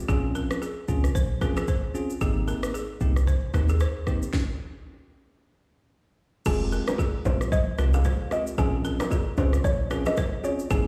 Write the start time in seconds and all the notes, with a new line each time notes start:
0.08 A#1 C4 C#4 F4 G#4, kick, shaker
0.35 A#4, shaker
0.51 cross-stick, shaker
0.62 G#4, shaker
0.88 C#2 C4 C#4 F4 G#4, kick, shaker
1.04 cross-stick, shaker
1.15 A#1 C5, kick, shaker
1.41 C4 C#4 F4 G#4 A#4, kick, cross-stick, shaker
1.57 G#4, cross-stick, shaker
1.68 C5, kick, shaker
1.94 C4 C#4 F4 G#4, shaker
2.10 shaker
2.21 G#1 A#3 C4 D#4 G4 G#4, kick, shaker
2.48 A#4, shaker
2.63 cross-stick, shaker
2.74 G#4, shaker
3.01 C2 A#3 C4 D#4 G4, kick, shaker
3.16 cross-stick, shaker
3.27 C5, kick, shaker
3.54 D#2 A#3 C4 D#4 G4 A#4, kick, cross-stick, shaker
3.69 G#4, shaker
3.80 C5, cross-stick, shaker
4.07 A#3 C4 D#4 G4, kick, cross-stick, shaker
4.22 shaker
4.33 kick, snare
6.46 F1 G#3 C4 F4 G4 G#4, kick, crash, low conga, shaker
6.72 A#4, shaker
6.88 A#4, cross-stick, low bongo, shaker
6.98 G#4, kick, high bongo, shaker
7.25 A#1 G#3 C4 F4 G4 C5, kick, low bongo, shaker
7.41 cross-stick, shaker
7.52 C5 D#5, kick, low conga, shaker
7.78 C2 G#3 C4 F4 G4 A#4, cross-stick, shaker
7.94 G#4 F5, low bongo, shaker
8.05 C5, kick, cross-stick, high bongo, low conga, shaker
8.31 G#3 C4 F4 G4 D#5, cross-stick, high bongo, shaker
8.47 shaker
8.58 A#1 C4 C#4 F4 G#4, kick, low conga, shaker
8.85 A#4, shaker
9.00 A#4, cross-stick, low bongo, shaker
9.11 G#4, kick, high bongo, shaker
9.37 C#2 C4 C#4 F4 G#4 C5, kick, low bongo, shaker
9.53 cross-stick, shaker
9.64 A#1 C5 C#5, kick, low conga, shaker
9.90 C4 C#4 F4 G#4 A#4, cross-stick, shaker
10.06 G#4 D#5, cross-stick, low bongo, shaker
10.17 C5, kick, cross-stick, high bongo, low conga, shaker
10.44 C4 C#4 F4 G#4 C#5, high bongo, shaker
10.59 shaker
10.70 G#1 A#3 C4 D#4 G4 G#4, kick, low conga, shaker